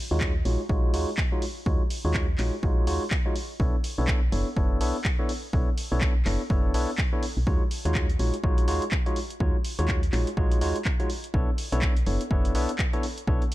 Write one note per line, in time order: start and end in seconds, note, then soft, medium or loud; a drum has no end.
0.11 0.43 D#2 loud
0.11 0.32 G#3 medium
0.11 0.32 D#4 medium
0.11 0.32 F4 medium
0.11 0.32 F#4 medium
0.11 0.32 C#5 loud
0.21 kick loud
0.21 clap loud
0.45 0.57 A#1 loud
0.45 0.61 G#3 medium
0.45 0.61 D#4 medium
0.45 0.61 F4 medium
0.45 0.61 F#4 medium
0.45 0.61 C#5 medium
0.45 open hi-hat loud
0.69 0.95 A#1 medium
0.69 0.91 G#3 medium
0.69 0.91 D#4 medium
0.69 0.91 F4 medium
0.69 0.91 F#4 medium
0.69 0.91 C#5 loud
0.69 kick loud
0.94 1.06 D#2 medium
0.94 1.09 G#3 medium
0.94 1.09 D#4 medium
0.94 1.09 F4 medium
0.94 1.09 F#4 medium
0.94 1.09 C#5 medium
0.94 open hi-hat loud
1.17 kick loud
1.17 clap loud
1.32 1.44 G#3 medium
1.32 1.44 D#4 medium
1.32 1.44 F4 medium
1.32 1.44 F#4 medium
1.32 1.44 C#5 loud
1.42 open hi-hat loud
1.66 1.78 D#2 loud
1.66 1.82 G#3 medium
1.66 1.82 D#4 medium
1.66 1.82 F4 medium
1.66 1.82 F#4 medium
1.66 1.82 C#5 loud
1.66 kick loud
1.90 open hi-hat loud
2.05 2.36 D#2 loud
2.05 2.26 G#3 medium
2.05 2.26 D#4 medium
2.05 2.26 F4 medium
2.05 2.26 F#4 medium
2.05 2.26 C#5 loud
2.14 kick loud
2.14 clap loud
2.38 2.51 A#1 loud
2.38 2.54 G#3 medium
2.38 2.54 D#4 medium
2.38 2.54 F4 medium
2.38 2.54 F#4 medium
2.38 2.54 C#5 medium
2.38 clap medium
2.38 open hi-hat loud
2.63 2.89 A#1 medium
2.63 2.85 G#3 loud
2.63 2.85 D#4 medium
2.63 2.85 F4 medium
2.63 2.85 F#4 medium
2.63 2.85 C#5 loud
2.63 kick loud
2.87 2.99 D#2 medium
2.87 3.03 G#3 medium
2.87 3.03 D#4 medium
2.87 3.03 F4 medium
2.87 3.03 F#4 medium
2.87 3.03 C#5 medium
2.87 open hi-hat loud
3.11 kick loud
3.11 clap loud
3.26 3.34 G#3 medium
3.26 3.34 D#4 medium
3.26 3.34 F4 medium
3.26 3.34 F#4 medium
3.26 3.34 C#5 loud
3.36 open hi-hat loud
3.60 3.72 B1 loud
3.60 3.75 B3 medium
3.60 3.75 D4 medium
3.60 3.75 E4 medium
3.60 3.75 A4 medium
3.60 3.75 C#5 loud
3.60 kick loud
3.84 open hi-hat loud
3.98 4.30 B1 loud
3.98 4.19 B3 medium
3.98 4.19 D4 medium
3.98 4.19 E4 medium
3.98 4.19 A4 medium
3.98 4.19 C#5 loud
4.08 kick loud
4.08 clap loud
4.32 4.44 F#1 loud
4.32 4.48 B3 medium
4.32 4.48 D4 medium
4.32 4.48 E4 medium
4.32 4.48 A4 medium
4.32 4.48 C#5 medium
4.32 open hi-hat loud
4.56 4.82 F#1 medium
4.56 4.78 B3 medium
4.56 4.78 D4 medium
4.56 4.78 E4 medium
4.56 4.78 A4 medium
4.56 4.78 C#5 loud
4.56 kick loud
4.81 4.93 B1 medium
4.81 4.96 B3 medium
4.81 4.96 D4 medium
4.81 4.96 E4 medium
4.81 4.96 A4 medium
4.81 4.96 C#5 medium
4.81 open hi-hat loud
5.04 kick loud
5.04 clap loud
5.19 5.31 B3 medium
5.19 5.31 D4 medium
5.19 5.31 E4 medium
5.19 5.31 A4 medium
5.19 5.31 C#5 loud
5.29 open hi-hat loud
5.53 5.65 B1 loud
5.53 5.69 B3 medium
5.53 5.69 D4 medium
5.53 5.69 E4 medium
5.53 5.69 A4 medium
5.53 5.69 C#5 loud
5.53 kick loud
5.78 open hi-hat loud
5.92 6.23 B1 loud
5.92 6.13 B3 medium
5.92 6.13 D4 medium
5.92 6.13 E4 medium
5.92 6.13 A4 medium
5.92 6.13 C#5 loud
6.01 kick loud
6.01 clap loud
6.25 6.38 F#1 loud
6.25 6.41 B3 medium
6.25 6.41 D4 medium
6.25 6.41 E4 medium
6.25 6.41 A4 medium
6.25 6.41 C#5 medium
6.25 clap medium
6.25 open hi-hat loud
6.50 6.76 F#1 medium
6.50 6.72 B3 medium
6.50 6.72 D4 medium
6.50 6.72 E4 medium
6.50 6.72 A4 medium
6.50 6.72 C#5 loud
6.50 kick loud
6.74 6.86 B1 medium
6.74 6.90 B3 medium
6.74 6.90 D4 medium
6.74 6.90 E4 medium
6.74 6.90 A4 medium
6.74 6.90 C#5 medium
6.74 open hi-hat loud
6.98 kick loud
6.98 clap loud
7.13 7.24 B3 medium
7.13 7.24 D4 medium
7.13 7.24 E4 medium
7.13 7.24 A4 medium
7.13 7.24 C#5 loud
7.23 open hi-hat loud
7.37 7.45 B1 medium
7.47 7.59 D#2 loud
7.47 7.62 G#3 medium
7.47 7.62 D#4 medium
7.47 7.62 F4 medium
7.47 7.62 F#4 medium
7.47 7.62 C#5 loud
7.47 kick loud
7.71 open hi-hat loud
7.85 8.17 D#2 loud
7.85 8.06 G#3 medium
7.85 8.06 D#4 medium
7.85 8.06 F4 medium
7.85 8.06 F#4 medium
7.85 8.06 C#5 loud
7.85 closed hi-hat medium
7.95 kick loud
7.95 clap loud
8.10 closed hi-hat soft
8.19 8.31 A#1 loud
8.19 8.35 G#3 medium
8.19 8.35 D#4 medium
8.19 8.35 F4 medium
8.19 8.35 F#4 medium
8.19 8.35 C#5 medium
8.19 open hi-hat loud
8.34 closed hi-hat medium
8.44 8.69 A#1 medium
8.44 8.65 G#3 loud
8.44 8.65 D#4 medium
8.44 8.65 F4 medium
8.44 8.65 F#4 medium
8.44 8.65 C#5 loud
8.44 kick loud
8.58 closed hi-hat soft
8.68 8.80 D#2 medium
8.68 8.83 G#3 medium
8.68 8.83 D#4 medium
8.68 8.83 F4 medium
8.68 8.83 F#4 medium
8.68 8.83 C#5 medium
8.68 open hi-hat loud
8.82 closed hi-hat medium
8.91 kick loud
8.91 clap loud
9.06 9.18 G#3 medium
9.06 9.18 D#4 medium
9.06 9.18 F4 medium
9.06 9.18 F#4 medium
9.06 9.18 C#5 loud
9.06 closed hi-hat soft
9.16 open hi-hat loud
9.30 closed hi-hat medium
9.40 9.52 D#2 loud
9.40 9.56 G#3 medium
9.40 9.56 D#4 medium
9.40 9.56 F4 medium
9.40 9.56 F#4 medium
9.40 9.56 C#5 loud
9.40 kick loud
9.64 open hi-hat loud
9.79 10.10 D#2 loud
9.79 10.00 G#3 medium
9.79 10.00 D#4 medium
9.79 10.00 F4 medium
9.79 10.00 F#4 medium
9.79 10.00 C#5 loud
9.79 closed hi-hat medium
9.88 kick loud
9.88 clap loud
10.03 closed hi-hat medium
10.12 10.25 A#1 loud
10.12 10.28 G#3 medium
10.12 10.28 D#4 medium
10.12 10.28 F4 medium
10.12 10.28 F#4 medium
10.12 10.28 C#5 medium
10.12 clap medium
10.12 open hi-hat medium
10.27 closed hi-hat medium
10.37 10.63 A#1 medium
10.37 10.59 G#3 medium
10.37 10.59 D#4 medium
10.37 10.59 F4 medium
10.37 10.59 F#4 medium
10.37 10.59 C#5 loud
10.37 kick loud
10.51 closed hi-hat medium
10.61 10.73 D#2 medium
10.61 10.77 G#3 medium
10.61 10.77 D#4 medium
10.61 10.77 F4 medium
10.61 10.77 F#4 medium
10.61 10.77 C#5 medium
10.61 open hi-hat loud
10.76 closed hi-hat medium
10.85 kick loud
10.85 clap loud
11.00 11.09 G#3 medium
11.00 11.09 D#4 medium
11.00 11.09 F4 medium
11.00 11.09 F#4 medium
11.00 11.09 C#5 medium
11.00 closed hi-hat soft
11.10 open hi-hat loud
11.24 closed hi-hat medium
11.34 11.46 B1 loud
11.34 11.49 B3 medium
11.34 11.49 D4 medium
11.34 11.49 E4 medium
11.34 11.49 A4 medium
11.34 11.49 C#5 loud
11.34 kick loud
11.58 open hi-hat loud
11.72 12.04 B1 loud
11.72 11.93 B3 medium
11.72 11.93 D4 medium
11.72 11.93 E4 medium
11.72 11.93 A4 medium
11.72 11.93 C#5 loud
11.72 closed hi-hat medium
11.82 kick loud
11.82 clap loud
11.97 closed hi-hat medium
12.06 12.19 F#1 loud
12.06 12.22 B3 medium
12.06 12.22 D4 medium
12.06 12.22 E4 medium
12.06 12.22 A4 medium
12.06 12.22 C#5 medium
12.06 open hi-hat medium
12.21 closed hi-hat medium
12.31 12.56 F#1 medium
12.31 12.52 B3 loud
12.31 12.52 D4 medium
12.31 12.53 E4 medium
12.31 12.53 A4 medium
12.31 12.53 C#5 loud
12.31 kick loud
12.45 closed hi-hat medium
12.55 12.67 B1 medium
12.55 12.70 B3 medium
12.55 12.70 D4 medium
12.55 12.70 E4 medium
12.55 12.70 A4 medium
12.55 12.70 C#5 medium
12.55 open hi-hat loud
12.69 closed hi-hat medium
12.79 kick loud
12.79 clap loud
12.93 13.05 B3 medium
12.93 13.05 D4 medium
12.93 13.05 E4 medium
12.93 13.05 A4 medium
12.93 13.05 C#5 loud
12.93 closed hi-hat soft
13.03 open hi-hat loud
13.18 closed hi-hat medium
13.27 13.39 B1 loud
13.27 13.43 B3 medium
13.27 13.43 D4 medium
13.27 13.43 E4 medium
13.27 13.43 A4 medium
13.27 13.43 C#5 loud
13.27 kick loud
13.42 closed hi-hat soft